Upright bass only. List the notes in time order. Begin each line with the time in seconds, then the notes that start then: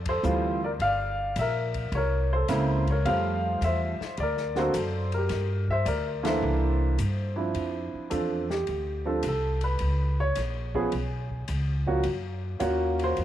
Already playing: F2
0.24 D2
0.79 G1
1.36 A#1
1.92 C2
2.49 C#2
3.05 F2
3.61 E2
4.00 muted upright bass stroke
4.18 D2
4.74 F#2
5.30 G2
5.86 D2
6.42 C2
6.99 G2
7.55 F2
7.94 muted upright bass stroke
8.11 E2
8.69 D2
9.24 C2
9.81 C#2
10.37 A#1
10.93 B1
11.49 C#2
12.05 F#2
12.61 D#2
13.18 F2